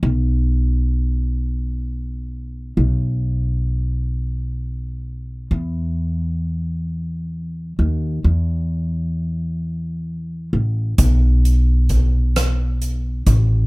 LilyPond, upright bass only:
\new Staff \with { instrumentName = "Upright bass" } { \clef bass \time 6/8 \key b \mixolydian \tempo 4. = 44 b,,2. | b,,2. | e,2~ e,8 dis,8 | e,2~ e,8 a,,8 |
b,,2~ b,,8 a,,8 | }